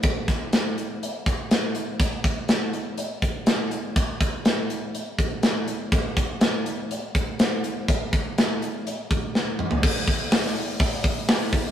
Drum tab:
CC |----------------|----------------|----------------|----------------|
HH |x-x-x-x-x-x-x-x-|x-x-x-x-x-x-x-x-|x-x-x-x-x-x-x-x-|x-x-x-x-x-x-x-x-|
SD |--o-o-------o---|----o-------o---|----o-------o---|----o-------o---|
T2 |----------------|----------------|----------------|----------------|
FT |----------------|----------------|----------------|----------------|
BD |o-o-------o-----|o-o-------o-----|o-o-------o-----|o-o-------o-----|

CC |----------------|x---------------|
HH |x-x-x-x-x-x-----|--o-o-o-o-o-o-o-|
SD |----o-------o---|----oo------o---|
T2 |--------------o-|----------------|
FT |---------------o|----------------|
BD |o-o-------o-----|o-o-----o-o---o-|